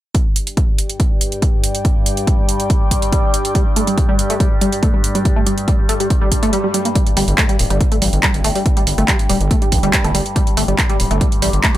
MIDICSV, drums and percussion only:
0, 0, Header, 1, 2, 480
1, 0, Start_track
1, 0, Tempo, 425532
1, 165, Time_signature, 4, 2, 24, 8
1, 13283, End_track
2, 0, Start_track
2, 0, Title_t, "Drums"
2, 165, Note_on_c, 9, 36, 115
2, 165, Note_on_c, 9, 42, 67
2, 278, Note_off_c, 9, 36, 0
2, 278, Note_off_c, 9, 42, 0
2, 405, Note_on_c, 9, 42, 89
2, 518, Note_off_c, 9, 42, 0
2, 530, Note_on_c, 9, 42, 64
2, 643, Note_off_c, 9, 42, 0
2, 645, Note_on_c, 9, 36, 118
2, 645, Note_on_c, 9, 42, 66
2, 758, Note_off_c, 9, 36, 0
2, 758, Note_off_c, 9, 42, 0
2, 885, Note_on_c, 9, 42, 89
2, 998, Note_off_c, 9, 42, 0
2, 1010, Note_on_c, 9, 42, 65
2, 1123, Note_off_c, 9, 42, 0
2, 1125, Note_on_c, 9, 36, 112
2, 1125, Note_on_c, 9, 42, 64
2, 1238, Note_off_c, 9, 36, 0
2, 1238, Note_off_c, 9, 42, 0
2, 1365, Note_on_c, 9, 42, 97
2, 1478, Note_off_c, 9, 42, 0
2, 1490, Note_on_c, 9, 42, 64
2, 1603, Note_off_c, 9, 42, 0
2, 1605, Note_on_c, 9, 36, 117
2, 1605, Note_on_c, 9, 42, 67
2, 1718, Note_off_c, 9, 36, 0
2, 1718, Note_off_c, 9, 42, 0
2, 1845, Note_on_c, 9, 42, 92
2, 1958, Note_off_c, 9, 42, 0
2, 1970, Note_on_c, 9, 42, 69
2, 2083, Note_off_c, 9, 42, 0
2, 2085, Note_on_c, 9, 36, 117
2, 2085, Note_on_c, 9, 42, 67
2, 2198, Note_off_c, 9, 36, 0
2, 2198, Note_off_c, 9, 42, 0
2, 2325, Note_on_c, 9, 42, 91
2, 2438, Note_off_c, 9, 42, 0
2, 2450, Note_on_c, 9, 42, 67
2, 2563, Note_off_c, 9, 42, 0
2, 2565, Note_on_c, 9, 36, 120
2, 2565, Note_on_c, 9, 42, 68
2, 2678, Note_off_c, 9, 36, 0
2, 2678, Note_off_c, 9, 42, 0
2, 2805, Note_on_c, 9, 42, 89
2, 2918, Note_off_c, 9, 42, 0
2, 2930, Note_on_c, 9, 42, 68
2, 3043, Note_off_c, 9, 42, 0
2, 3045, Note_on_c, 9, 36, 120
2, 3045, Note_on_c, 9, 42, 66
2, 3158, Note_off_c, 9, 36, 0
2, 3158, Note_off_c, 9, 42, 0
2, 3285, Note_on_c, 9, 36, 60
2, 3285, Note_on_c, 9, 42, 95
2, 3398, Note_off_c, 9, 36, 0
2, 3398, Note_off_c, 9, 42, 0
2, 3410, Note_on_c, 9, 42, 66
2, 3523, Note_off_c, 9, 42, 0
2, 3525, Note_on_c, 9, 36, 119
2, 3525, Note_on_c, 9, 42, 67
2, 3638, Note_off_c, 9, 36, 0
2, 3638, Note_off_c, 9, 42, 0
2, 3765, Note_on_c, 9, 42, 93
2, 3878, Note_off_c, 9, 42, 0
2, 3890, Note_on_c, 9, 42, 69
2, 4003, Note_off_c, 9, 42, 0
2, 4005, Note_on_c, 9, 36, 120
2, 4005, Note_on_c, 9, 42, 67
2, 4117, Note_off_c, 9, 36, 0
2, 4118, Note_off_c, 9, 42, 0
2, 4245, Note_on_c, 9, 42, 94
2, 4358, Note_off_c, 9, 42, 0
2, 4370, Note_on_c, 9, 42, 65
2, 4483, Note_off_c, 9, 42, 0
2, 4485, Note_on_c, 9, 36, 126
2, 4485, Note_on_c, 9, 42, 68
2, 4598, Note_off_c, 9, 36, 0
2, 4598, Note_off_c, 9, 42, 0
2, 4725, Note_on_c, 9, 42, 87
2, 4838, Note_off_c, 9, 42, 0
2, 4850, Note_on_c, 9, 42, 68
2, 4963, Note_off_c, 9, 42, 0
2, 4965, Note_on_c, 9, 36, 125
2, 4965, Note_on_c, 9, 42, 65
2, 5078, Note_off_c, 9, 36, 0
2, 5078, Note_off_c, 9, 42, 0
2, 5205, Note_on_c, 9, 42, 93
2, 5317, Note_off_c, 9, 42, 0
2, 5330, Note_on_c, 9, 42, 65
2, 5443, Note_off_c, 9, 42, 0
2, 5445, Note_on_c, 9, 36, 127
2, 5445, Note_on_c, 9, 42, 66
2, 5557, Note_off_c, 9, 42, 0
2, 5558, Note_off_c, 9, 36, 0
2, 5685, Note_on_c, 9, 42, 90
2, 5797, Note_off_c, 9, 42, 0
2, 5810, Note_on_c, 9, 42, 65
2, 5923, Note_off_c, 9, 42, 0
2, 5925, Note_on_c, 9, 36, 120
2, 5925, Note_on_c, 9, 42, 66
2, 6037, Note_off_c, 9, 42, 0
2, 6038, Note_off_c, 9, 36, 0
2, 6165, Note_on_c, 9, 42, 89
2, 6278, Note_off_c, 9, 42, 0
2, 6290, Note_on_c, 9, 42, 62
2, 6403, Note_off_c, 9, 42, 0
2, 6405, Note_on_c, 9, 36, 125
2, 6405, Note_on_c, 9, 42, 63
2, 6517, Note_off_c, 9, 36, 0
2, 6518, Note_off_c, 9, 42, 0
2, 6645, Note_on_c, 9, 42, 88
2, 6757, Note_off_c, 9, 42, 0
2, 6770, Note_on_c, 9, 42, 66
2, 6883, Note_off_c, 9, 42, 0
2, 6885, Note_on_c, 9, 36, 116
2, 6885, Note_on_c, 9, 42, 63
2, 6997, Note_off_c, 9, 36, 0
2, 6997, Note_off_c, 9, 42, 0
2, 7125, Note_on_c, 9, 36, 62
2, 7125, Note_on_c, 9, 42, 93
2, 7237, Note_off_c, 9, 36, 0
2, 7237, Note_off_c, 9, 42, 0
2, 7250, Note_on_c, 9, 42, 62
2, 7363, Note_off_c, 9, 42, 0
2, 7365, Note_on_c, 9, 42, 65
2, 7477, Note_off_c, 9, 42, 0
2, 7605, Note_on_c, 9, 42, 86
2, 7717, Note_off_c, 9, 42, 0
2, 7730, Note_on_c, 9, 42, 66
2, 7842, Note_off_c, 9, 42, 0
2, 7845, Note_on_c, 9, 36, 115
2, 7845, Note_on_c, 9, 42, 83
2, 7957, Note_off_c, 9, 36, 0
2, 7958, Note_off_c, 9, 42, 0
2, 7970, Note_on_c, 9, 42, 55
2, 8083, Note_off_c, 9, 42, 0
2, 8085, Note_on_c, 9, 46, 104
2, 8198, Note_off_c, 9, 46, 0
2, 8210, Note_on_c, 9, 42, 53
2, 8323, Note_off_c, 9, 42, 0
2, 8325, Note_on_c, 9, 36, 122
2, 8325, Note_on_c, 9, 39, 123
2, 8325, Note_on_c, 9, 42, 84
2, 8437, Note_off_c, 9, 36, 0
2, 8438, Note_off_c, 9, 39, 0
2, 8438, Note_off_c, 9, 42, 0
2, 8450, Note_on_c, 9, 42, 56
2, 8563, Note_off_c, 9, 42, 0
2, 8565, Note_on_c, 9, 46, 102
2, 8678, Note_off_c, 9, 46, 0
2, 8690, Note_on_c, 9, 42, 54
2, 8803, Note_off_c, 9, 42, 0
2, 8805, Note_on_c, 9, 36, 116
2, 8805, Note_on_c, 9, 42, 81
2, 8918, Note_off_c, 9, 36, 0
2, 8918, Note_off_c, 9, 42, 0
2, 8930, Note_on_c, 9, 42, 55
2, 9043, Note_off_c, 9, 42, 0
2, 9045, Note_on_c, 9, 46, 109
2, 9158, Note_off_c, 9, 46, 0
2, 9170, Note_on_c, 9, 42, 52
2, 9283, Note_off_c, 9, 42, 0
2, 9285, Note_on_c, 9, 36, 120
2, 9285, Note_on_c, 9, 39, 123
2, 9285, Note_on_c, 9, 42, 84
2, 9397, Note_off_c, 9, 36, 0
2, 9398, Note_off_c, 9, 39, 0
2, 9398, Note_off_c, 9, 42, 0
2, 9410, Note_on_c, 9, 42, 55
2, 9523, Note_off_c, 9, 42, 0
2, 9525, Note_on_c, 9, 46, 105
2, 9638, Note_off_c, 9, 46, 0
2, 9650, Note_on_c, 9, 46, 63
2, 9763, Note_off_c, 9, 46, 0
2, 9765, Note_on_c, 9, 36, 122
2, 9765, Note_on_c, 9, 42, 83
2, 9877, Note_off_c, 9, 36, 0
2, 9878, Note_off_c, 9, 42, 0
2, 9890, Note_on_c, 9, 42, 54
2, 10003, Note_off_c, 9, 42, 0
2, 10005, Note_on_c, 9, 46, 104
2, 10118, Note_off_c, 9, 46, 0
2, 10130, Note_on_c, 9, 42, 53
2, 10243, Note_off_c, 9, 42, 0
2, 10245, Note_on_c, 9, 36, 120
2, 10245, Note_on_c, 9, 39, 121
2, 10245, Note_on_c, 9, 42, 85
2, 10357, Note_off_c, 9, 36, 0
2, 10358, Note_off_c, 9, 39, 0
2, 10358, Note_off_c, 9, 42, 0
2, 10370, Note_on_c, 9, 42, 56
2, 10483, Note_off_c, 9, 42, 0
2, 10485, Note_on_c, 9, 46, 107
2, 10598, Note_off_c, 9, 46, 0
2, 10610, Note_on_c, 9, 42, 56
2, 10723, Note_off_c, 9, 42, 0
2, 10725, Note_on_c, 9, 36, 124
2, 10725, Note_on_c, 9, 42, 81
2, 10837, Note_off_c, 9, 36, 0
2, 10837, Note_off_c, 9, 42, 0
2, 10850, Note_on_c, 9, 42, 54
2, 10963, Note_off_c, 9, 42, 0
2, 10965, Note_on_c, 9, 36, 64
2, 10965, Note_on_c, 9, 46, 111
2, 11078, Note_off_c, 9, 36, 0
2, 11078, Note_off_c, 9, 46, 0
2, 11090, Note_on_c, 9, 42, 54
2, 11203, Note_off_c, 9, 42, 0
2, 11205, Note_on_c, 9, 36, 120
2, 11205, Note_on_c, 9, 39, 124
2, 11205, Note_on_c, 9, 42, 85
2, 11318, Note_off_c, 9, 36, 0
2, 11318, Note_off_c, 9, 39, 0
2, 11318, Note_off_c, 9, 42, 0
2, 11331, Note_on_c, 9, 42, 53
2, 11443, Note_off_c, 9, 42, 0
2, 11445, Note_on_c, 9, 46, 105
2, 11558, Note_off_c, 9, 46, 0
2, 11571, Note_on_c, 9, 42, 55
2, 11683, Note_off_c, 9, 42, 0
2, 11685, Note_on_c, 9, 36, 126
2, 11686, Note_on_c, 9, 42, 81
2, 11798, Note_off_c, 9, 36, 0
2, 11798, Note_off_c, 9, 42, 0
2, 11810, Note_on_c, 9, 42, 53
2, 11923, Note_off_c, 9, 42, 0
2, 11925, Note_on_c, 9, 46, 111
2, 12038, Note_off_c, 9, 46, 0
2, 12051, Note_on_c, 9, 42, 52
2, 12163, Note_off_c, 9, 42, 0
2, 12165, Note_on_c, 9, 36, 125
2, 12166, Note_on_c, 9, 39, 118
2, 12166, Note_on_c, 9, 42, 82
2, 12278, Note_off_c, 9, 36, 0
2, 12278, Note_off_c, 9, 39, 0
2, 12278, Note_off_c, 9, 42, 0
2, 12290, Note_on_c, 9, 42, 56
2, 12403, Note_off_c, 9, 42, 0
2, 12405, Note_on_c, 9, 46, 104
2, 12518, Note_off_c, 9, 46, 0
2, 12530, Note_on_c, 9, 42, 55
2, 12643, Note_off_c, 9, 42, 0
2, 12645, Note_on_c, 9, 36, 122
2, 12645, Note_on_c, 9, 42, 80
2, 12758, Note_off_c, 9, 36, 0
2, 12758, Note_off_c, 9, 42, 0
2, 12770, Note_on_c, 9, 42, 54
2, 12883, Note_off_c, 9, 42, 0
2, 12885, Note_on_c, 9, 46, 114
2, 12997, Note_off_c, 9, 46, 0
2, 13010, Note_on_c, 9, 42, 52
2, 13122, Note_off_c, 9, 42, 0
2, 13125, Note_on_c, 9, 36, 126
2, 13125, Note_on_c, 9, 39, 115
2, 13125, Note_on_c, 9, 42, 81
2, 13238, Note_off_c, 9, 36, 0
2, 13238, Note_off_c, 9, 39, 0
2, 13238, Note_off_c, 9, 42, 0
2, 13283, End_track
0, 0, End_of_file